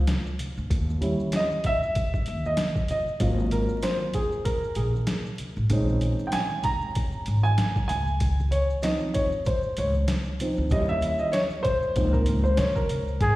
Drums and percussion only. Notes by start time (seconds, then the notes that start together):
0.07 snare, closed hi-hat, low conga, maracas
0.26 maracas
0.39 closed hi-hat, low conga, maracas
0.58 maracas
0.70 kick, closed hi-hat, maracas
0.90 high conga, maracas
1.02 closed hi-hat, high conga, maracas
1.20 maracas
1.32 snare, closed hi-hat, maracas
1.51 high conga, maracas
1.64 kick, closed hi-hat, low conga, maracas
1.83 maracas
1.95 kick, closed hi-hat, maracas
2.14 kick, maracas
2.26 closed hi-hat, maracas
2.45 high conga, maracas
2.57 snare, closed hi-hat, low conga, maracas
2.76 kick, maracas
2.88 closed hi-hat, low conga, maracas
3.08 maracas
3.20 kick, closed hi-hat, maracas
3.39 high conga, maracas
3.51 closed hi-hat, high conga, maracas
3.69 maracas
3.82 snare, closed hi-hat, maracas
4.00 high conga, maracas
4.14 kick, closed hi-hat, low conga, maracas
4.32 maracas
4.45 kick, closed hi-hat, maracas
4.64 maracas
4.75 closed hi-hat, maracas
4.96 high conga, maracas
5.07 snare, closed hi-hat, low conga, maracas
5.26 maracas
5.38 closed hi-hat, low conga, maracas
5.57 maracas
5.70 kick, closed hi-hat, maracas
5.89 high conga, maracas
6.01 closed hi-hat, high conga, maracas
6.19 maracas
6.32 snare, closed hi-hat, maracas
6.50 high conga, maracas
6.63 kick, closed hi-hat, low conga, maracas
6.81 maracas
6.95 kick, closed hi-hat, maracas
7.12 maracas
7.26 closed hi-hat, maracas
7.45 high conga, maracas
7.58 snare, closed hi-hat, low conga, maracas
7.76 kick, maracas
7.89 closed hi-hat, low conga, maracas
8.07 maracas
8.20 kick, closed hi-hat, maracas
8.40 high conga, maracas
8.52 closed hi-hat, high conga, maracas
8.70 maracas
8.82 snare, closed hi-hat, maracas
9.00 high conga, maracas
9.14 kick, closed hi-hat, low conga, maracas
9.32 maracas
9.45 kick, closed hi-hat, maracas
9.63 maracas
9.77 closed hi-hat, maracas
9.94 high conga, maracas
10.08 snare, closed hi-hat, low conga, maracas
10.25 maracas
10.39 closed hi-hat, low conga, maracas
10.56 maracas
10.69 kick, closed hi-hat, maracas
10.89 high conga, maracas
11.01 closed hi-hat, high conga, maracas
11.19 maracas
11.33 snare, closed hi-hat, maracas
11.50 high conga, maracas
11.64 kick, closed hi-hat, low conga, maracas
11.82 maracas
11.96 kick, closed hi-hat, maracas
12.14 kick, maracas
12.26 closed hi-hat, maracas
12.45 high conga, maracas
12.57 snare, closed hi-hat, low conga, maracas
12.76 kick, maracas
12.89 closed hi-hat, low conga, maracas
13.08 maracas
13.21 kick, closed hi-hat